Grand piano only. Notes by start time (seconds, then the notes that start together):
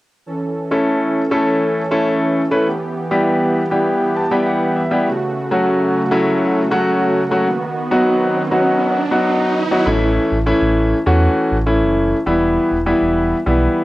0.71 A3 C#4 E4 A4
1.31 A3 C#4 E4 A4
1.91 A3 C#4 E4 A4
2.51 A3 C#4 E4 B4
3.11 G3 B3 E4 G4
3.71 G3 B3 E4 G4
4.16 A5
4.31 G3 B3 E4 G4 G5
4.46 F#5
4.76 E5
4.91 G3 B3 E4 G4
5.51 F#3 A3 C#4 F#4
6.11 F#3 A3 C#4 E4
6.71 F#3 A3 C#4 F#4
7.31 F#3 A3 C#4 F#4
7.91 F#3 B3 D#4 F#4
8.51 F#3 B3 D#4 F#4
9.11 F#3 B3 D#4 F#4
9.71 F#3 B3 D#4 F#4
9.86 E3 A3 C#4 E4
10.46 E3 A3 C#4 E4
11.06 E3 A3 C#4 F#4
11.66 E3 A3 C#4 E4
12.26 E3 G3 B3 E4
12.86 E3 G3 B3 E4
13.46 E3 G3 B3 E4